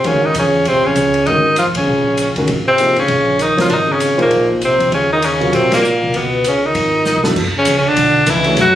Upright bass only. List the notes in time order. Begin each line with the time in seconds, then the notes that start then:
0.05 D#2
0.34 E2
0.66 A#1
0.96 C#2
1.28 G#1
1.67 A#1
1.77 C#2
1.88 A#1
2.36 C#2
2.49 G#1
2.97 C#2
3.08 A#1
3.58 C#2
3.70 G#1
4.18 muted upright bass stroke
4.31 A#1
4.79 E2
4.92 D#2
5.54 A#2
6.03 C2
6.14 C#2
6.75 G#1
7.17 B1
7.26 F1
7.36 F#1
7.55 muted upright bass stroke
7.67 C#2
7.97 B1
8.27 C#2
8.57 F#1